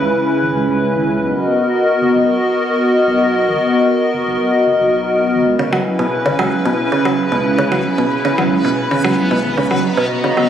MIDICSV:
0, 0, Header, 1, 5, 480
1, 0, Start_track
1, 0, Tempo, 530973
1, 1097, Time_signature, 4, 2, 24, 8
1, 9486, End_track
2, 0, Start_track
2, 0, Title_t, "Analog synth pad"
2, 0, Program_c, 0, 89
2, 0, Note_on_c, 0, 49, 84
2, 0, Note_on_c, 0, 61, 76
2, 0, Note_on_c, 0, 64, 78
2, 0, Note_on_c, 0, 71, 92
2, 1061, Note_off_c, 0, 49, 0
2, 1061, Note_off_c, 0, 61, 0
2, 1061, Note_off_c, 0, 64, 0
2, 1061, Note_off_c, 0, 71, 0
2, 1096, Note_on_c, 0, 59, 82
2, 1096, Note_on_c, 0, 66, 77
2, 1096, Note_on_c, 0, 70, 81
2, 1096, Note_on_c, 0, 75, 94
2, 4900, Note_off_c, 0, 59, 0
2, 4900, Note_off_c, 0, 66, 0
2, 4900, Note_off_c, 0, 70, 0
2, 4900, Note_off_c, 0, 75, 0
2, 4937, Note_on_c, 0, 49, 86
2, 4937, Note_on_c, 0, 61, 78
2, 4937, Note_on_c, 0, 64, 78
2, 4937, Note_on_c, 0, 71, 92
2, 8741, Note_off_c, 0, 49, 0
2, 8741, Note_off_c, 0, 61, 0
2, 8741, Note_off_c, 0, 64, 0
2, 8741, Note_off_c, 0, 71, 0
2, 8776, Note_on_c, 0, 59, 85
2, 8776, Note_on_c, 0, 75, 95
2, 8777, Note_on_c, 0, 66, 76
2, 8777, Note_on_c, 0, 82, 76
2, 9486, Note_off_c, 0, 59, 0
2, 9486, Note_off_c, 0, 66, 0
2, 9486, Note_off_c, 0, 75, 0
2, 9486, Note_off_c, 0, 82, 0
2, 9486, End_track
3, 0, Start_track
3, 0, Title_t, "Synth texture"
3, 0, Program_c, 1, 99
3, 4936, Note_on_c, 1, 71, 89
3, 4937, Note_on_c, 1, 59, 89
3, 9486, Note_off_c, 1, 59, 0
3, 9486, Note_off_c, 1, 71, 0
3, 9486, End_track
4, 0, Start_track
4, 0, Title_t, "Synth arpeggio sound"
4, 0, Program_c, 2, 84
4, 5056, Note_on_c, 2, 49, 104
4, 5169, Note_off_c, 2, 49, 0
4, 5176, Note_on_c, 2, 54, 101
4, 5252, Note_off_c, 2, 54, 0
4, 5416, Note_on_c, 2, 47, 101
4, 5492, Note_off_c, 2, 47, 0
4, 5656, Note_on_c, 2, 49, 101
4, 5769, Note_off_c, 2, 49, 0
4, 5776, Note_on_c, 2, 54, 109
4, 5852, Note_off_c, 2, 54, 0
4, 6016, Note_on_c, 2, 47, 104
4, 6091, Note_off_c, 2, 47, 0
4, 6256, Note_on_c, 2, 49, 103
4, 6369, Note_off_c, 2, 49, 0
4, 6376, Note_on_c, 2, 54, 100
4, 6451, Note_off_c, 2, 54, 0
4, 6616, Note_on_c, 2, 47, 98
4, 6692, Note_off_c, 2, 47, 0
4, 6856, Note_on_c, 2, 49, 103
4, 6969, Note_off_c, 2, 49, 0
4, 6977, Note_on_c, 2, 54, 103
4, 7052, Note_off_c, 2, 54, 0
4, 7216, Note_on_c, 2, 47, 105
4, 7292, Note_off_c, 2, 47, 0
4, 7457, Note_on_c, 2, 49, 104
4, 7569, Note_off_c, 2, 49, 0
4, 7576, Note_on_c, 2, 54, 102
4, 7652, Note_off_c, 2, 54, 0
4, 7817, Note_on_c, 2, 47, 105
4, 7892, Note_off_c, 2, 47, 0
4, 8057, Note_on_c, 2, 49, 100
4, 8170, Note_off_c, 2, 49, 0
4, 8176, Note_on_c, 2, 54, 109
4, 8252, Note_off_c, 2, 54, 0
4, 8416, Note_on_c, 2, 47, 105
4, 8492, Note_off_c, 2, 47, 0
4, 8656, Note_on_c, 2, 49, 103
4, 8769, Note_off_c, 2, 49, 0
4, 8776, Note_on_c, 2, 54, 103
4, 8852, Note_off_c, 2, 54, 0
4, 9016, Note_on_c, 2, 47, 104
4, 9092, Note_off_c, 2, 47, 0
4, 9256, Note_on_c, 2, 49, 104
4, 9369, Note_off_c, 2, 49, 0
4, 9376, Note_on_c, 2, 54, 104
4, 9452, Note_off_c, 2, 54, 0
4, 9486, End_track
5, 0, Start_track
5, 0, Title_t, "Sub bass"
5, 0, Program_c, 3, 38
5, 17, Note_on_c, 3, 37, 96
5, 117, Note_off_c, 3, 37, 0
5, 377, Note_on_c, 3, 32, 89
5, 477, Note_off_c, 3, 32, 0
5, 496, Note_on_c, 3, 37, 99
5, 611, Note_off_c, 3, 37, 0
5, 617, Note_on_c, 3, 37, 81
5, 817, Note_off_c, 3, 37, 0
5, 857, Note_on_c, 3, 32, 104
5, 957, Note_off_c, 3, 32, 0
5, 977, Note_on_c, 3, 37, 93
5, 1077, Note_off_c, 3, 37, 0
5, 1097, Note_on_c, 3, 35, 102
5, 1197, Note_off_c, 3, 35, 0
5, 1818, Note_on_c, 3, 30, 89
5, 1917, Note_off_c, 3, 30, 0
5, 1938, Note_on_c, 3, 35, 97
5, 2037, Note_off_c, 3, 35, 0
5, 2777, Note_on_c, 3, 35, 83
5, 3137, Note_on_c, 3, 30, 94
5, 3151, Note_off_c, 3, 35, 0
5, 3237, Note_off_c, 3, 30, 0
5, 3737, Note_on_c, 3, 30, 89
5, 3837, Note_off_c, 3, 30, 0
5, 3857, Note_on_c, 3, 35, 97
5, 3957, Note_off_c, 3, 35, 0
5, 4217, Note_on_c, 3, 30, 94
5, 4317, Note_off_c, 3, 30, 0
5, 4336, Note_on_c, 3, 35, 98
5, 4817, Note_on_c, 3, 30, 80
5, 4830, Note_off_c, 3, 35, 0
5, 4917, Note_off_c, 3, 30, 0
5, 4937, Note_on_c, 3, 37, 103
5, 5037, Note_off_c, 3, 37, 0
5, 5656, Note_on_c, 3, 32, 92
5, 5757, Note_off_c, 3, 32, 0
5, 5776, Note_on_c, 3, 37, 92
5, 5877, Note_off_c, 3, 37, 0
5, 6617, Note_on_c, 3, 37, 82
5, 6976, Note_on_c, 3, 35, 93
5, 6990, Note_off_c, 3, 37, 0
5, 7077, Note_off_c, 3, 35, 0
5, 7577, Note_on_c, 3, 32, 88
5, 7677, Note_off_c, 3, 32, 0
5, 7697, Note_on_c, 3, 37, 97
5, 7797, Note_off_c, 3, 37, 0
5, 8056, Note_on_c, 3, 32, 91
5, 8157, Note_off_c, 3, 32, 0
5, 8177, Note_on_c, 3, 37, 102
5, 8291, Note_off_c, 3, 37, 0
5, 8297, Note_on_c, 3, 37, 84
5, 8497, Note_off_c, 3, 37, 0
5, 8536, Note_on_c, 3, 32, 97
5, 8637, Note_off_c, 3, 32, 0
5, 8657, Note_on_c, 3, 37, 96
5, 8757, Note_off_c, 3, 37, 0
5, 8777, Note_on_c, 3, 35, 104
5, 8877, Note_off_c, 3, 35, 0
5, 9486, End_track
0, 0, End_of_file